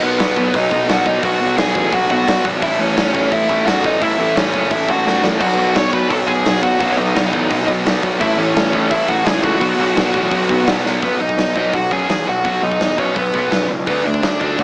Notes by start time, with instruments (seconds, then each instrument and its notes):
0.01 picked electric bass B1, distorted electric guitar B2 F#3 B3, lead electric guitar B3 B4
0.19 picked electric bass B1, distorted electric guitar B2 F#3 B3, snare, open hi-hat
0.37 picked electric bass B1, distorted electric guitar B2 F#3 B3, kick
0.54 picked electric bass B1, distorted electric guitar B2 F#3 B3, lead electric guitar D#4 D#5, kick, open hi-hat
0.71 picked electric bass B1, distorted electric guitar B2 F#3 B3, kick
0.89 picked electric bass B1, distorted electric guitar B2 F#3 B3, lead electric guitar F#4 F#5, snare, open hi-hat
1.06 distorted electric guitar B2 F#3 B3, lead electric guitar D#4 D#5, kick
1.22 picked electric bass B1, distorted electric guitar B2 F#3 B3, lead electric guitar F#4 F#5, kick, open hi-hat
1.41 picked electric bass B1, distorted electric guitar B2 F#3 B3
1.57 picked electric bass B1, distorted electric guitar B2 F#3 B3, lead electric guitar G#4 G#5, snare, open hi-hat
1.75 picked electric bass A1, distorted electric guitar B2 F#3 B3, kick
1.92 picked electric bass B1, distorted electric guitar B2 F#3 B3, lead electric guitar F#4 F#5, kick, open hi-hat
2.10 picked electric bass B1, distorted electric guitar B2 F#3 B3, lead electric guitar F#4 F#5, kick
2.26 picked electric bass B1, distorted electric guitar B2 F#3 B3, snare, open hi-hat
2.44 picked electric bass G#1, distorted electric guitar B2 F#3 B3, kick
2.62 picked electric bass A1, distorted electric guitar A2 E3 A3, lead electric guitar E4 E5, kick, open hi-hat
2.79 picked electric bass A1, distorted electric guitar A2 E3 A3, lead electric guitar C#4 C#5
2.97 picked electric bass A1, distorted electric guitar A2 E3 A3, snare, open hi-hat
3.14 picked electric bass A1, distorted electric guitar A2 E3 A3, kick
3.31 picked electric bass A1, distorted electric guitar A2 E3 A3, lead electric guitar E4 E5, kick, open hi-hat
3.49 picked electric bass A1, distorted electric guitar A2 E3 A3, kick
3.66 picked electric bass A1, distorted electric guitar A2 E3 A3, lead electric guitar F#4 F#5, snare, open hi-hat
3.84 distorted electric guitar A2 E3 A3, lead electric guitar D#4 D#5, kick
4.00 picked electric bass A1, distorted electric guitar A2 E3 A3, lead electric guitar E4 E5, kick, open hi-hat
4.18 picked electric bass A1, distorted electric guitar A2 E3 A3
4.35 picked electric bass A1, distorted electric guitar A2 E3 A3, lead electric guitar C#4 C#5, snare, open hi-hat
4.53 picked electric bass F#1, distorted electric guitar A2 E3 A3, kick
4.70 picked electric bass A1, distorted electric guitar A2 E3 A3, lead electric guitar E4 E5, kick, open hi-hat
4.88 picked electric bass A1, distorted electric guitar A2 E3 A3, lead electric guitar F#4 F#5, kick
5.05 picked electric bass A1, distorted electric guitar A2 E3 A3, snare
5.23 picked electric bass A1, distorted electric guitar A2 E3 A3, snare
5.41 picked electric bass B1, distorted electric guitar B2 F#3 B3, lead electric guitar F#4 F#5, kick, crash
5.58 picked electric bass B1, distorted electric guitar B2 F#3 B3
5.75 picked electric bass B1, distorted electric guitar B2 F#3 B3, lead electric guitar C#5 C#6, snare, open hi-hat
5.93 picked electric bass B1, distorted electric guitar B2 F#3 B3, lead electric guitar B4 B5, kick
6.09 picked electric bass B1, distorted electric guitar B2 F#3 B3, lead electric guitar A4 A5, kick, open hi-hat
6.27 picked electric bass B1, distorted electric guitar B2 F#3 B3, lead electric guitar G#4 G#5, kick
6.45 picked electric bass B1, distorted electric guitar B2 F#3 B3, snare, open hi-hat
6.63 distorted electric guitar B2 F#3 B3, lead electric guitar F#4 F#5, kick
6.79 picked electric bass B1, distorted electric guitar B2 F#3 B3, lead electric guitar F#4 F#5, kick, open hi-hat
6.91 lead electric guitar C#5
6.97 picked electric bass B1, distorted electric guitar B2 F#3 B3, lead electric guitar D#4 D#5
7.15 picked electric bass B1, distorted electric guitar B2 F#3 B3, snare, open hi-hat
7.33 picked electric bass A1, distorted electric guitar B2 F#3 B3, kick
7.50 picked electric bass B1, distorted electric guitar B2 F#3 B3, kick, open hi-hat
7.68 picked electric bass B1, distorted electric guitar B2 F#3 B3, kick
7.85 picked electric bass B1, distorted electric guitar B2 F#3 B3, snare, open hi-hat
8.03 picked electric bass B1, distorted electric guitar B2 F#3 B3, kick
8.20 picked electric bass A1, distorted electric guitar A2 E3 A3, lead electric guitar E4 E5, kick, open hi-hat
8.38 picked electric bass A1, distorted electric guitar A2 E3 A3, lead electric guitar C#4 C#5
8.55 picked electric bass A1, distorted electric guitar A2 E3 A3, snare, open hi-hat
8.73 picked electric bass A1, distorted electric guitar A2 E3 A3, kick
8.90 picked electric bass A1, distorted electric guitar A2 E3 A3, lead electric guitar E4 E5, kick, open hi-hat
9.08 picked electric bass A1, distorted electric guitar A2 E3 A3, lead electric guitar F#4 F#5, kick
9.25 picked electric bass C#2, distorted electric guitar A2 E3 A3, lead electric guitar G#4 G#5, snare, open hi-hat
9.42 distorted electric guitar A2 E3 A3, lead electric guitar F#4 F#5, kick
9.61 picked electric bass B1, distorted electric guitar B2 F#3 B3, kick, open hi-hat
9.78 picked electric bass B1, distorted electric guitar B2 F#3 B3
9.95 picked electric bass B1, distorted electric guitar B2 F#3 B3, snare, open hi-hat
10.14 picked electric bass A1, distorted electric guitar B2 F#3 B3, kick
10.31 picked electric bass B1, distorted electric guitar B2 F#3 B3, kick, open hi-hat
10.49 picked electric bass B1, distorted electric guitar B2 F#3 B3, kick
10.67 picked electric bass B1, distorted electric guitar B2 F#3 B3, snare, open hi-hat
10.85 picked electric bass B1, distorted electric guitar B2 F#3 B3, snare
11.02 picked electric bass B1, distorted electric guitar B2 F#3 B3, lead electric guitar B3 B4, kick, open hi-hat
11.20 picked electric bass B1, distorted electric guitar B2 F#3, lead electric guitar D#4 D#5
11.29 kick
11.37 picked electric bass B1, distorted electric guitar B2 F#3, snare, open hi-hat
11.56 picked electric bass B1, distorted electric guitar B2 F#3 B3, lead electric guitar D#4 D#5, kick
11.73 picked electric bass B1, distorted electric guitar B2 F#3, lead electric guitar F#4 F#5, kick, open hi-hat
11.91 picked electric bass F#2, distorted electric guitar B2 F#3 B3, lead electric guitar G#4 G#5, kick
12.09 picked electric bass E2, distorted electric guitar B2 F#3, snare, open hi-hat
12.27 picked electric bass B1, distorted electric guitar B2 F#3, lead electric guitar F#4 F#5
12.44 picked electric bass B1, distorted electric guitar B2 F#3 B3, lead electric guitar F#4 F#5, kick, open hi-hat
12.62 picked electric bass B1, distorted electric guitar B2 F#3, lead electric guitar D#4 D#5
12.71 kick
12.79 picked electric bass E2, distorted electric guitar B2 F#3, snare, open hi-hat
12.97 picked electric bass B1, distorted electric guitar B2 F#3 B3, lead electric guitar C#4 C#5, kick
13.15 picked electric bass B1, distorted electric guitar B2 F#3, lead electric guitar B3 B4, kick, open hi-hat
13.33 picked electric bass B1, distorted electric guitar B2 F#3 B3, kick
13.51 picked electric bass F#2, distorted electric guitar B2 F#3, snare, open hi-hat
13.69 picked electric bass C#2, distorted electric guitar B2 F#3
13.86 picked electric bass D2, distorted electric guitar D3 A3 D4, lead electric guitar B3 B4, kick, open hi-hat
14.05 picked electric bass D2, distorted electric guitar D3 A3, lead electric guitar D4 D5
14.14 kick
14.22 picked electric bass D2, distorted electric guitar D3 A3, snare, open hi-hat
14.40 picked electric bass D2, distorted electric guitar D3 A3 D4, lead electric guitar D4 D5, kick
14.58 picked electric bass D2, distorted electric guitar D3 A3, lead electric guitar F#4, kick, open hi-hat